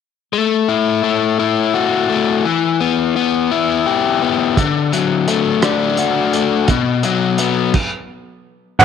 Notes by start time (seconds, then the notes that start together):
0.33 A3
0.68 E4
1.03 A3
1.39 E4
1.74 F#4
2.09 A3
2.44 E3
2.81 B3
3.16 B3
3.51 E4
3.86 G4
4.22 B3
4.57 D3, kick, closed hi-hat
4.92 F#3, closed hi-hat
5.28 A3, closed hi-hat
5.62 D4, cross-stick, closed hi-hat
5.97 F#4, closed hi-hat
6.33 A3, closed hi-hat
6.68 B2, kick, closed hi-hat
7.03 F#3, closed hi-hat
7.38 B3, closed hi-hat
7.74 kick, crash
8.79 A1 A2 E3 A3 F#5, kick, crash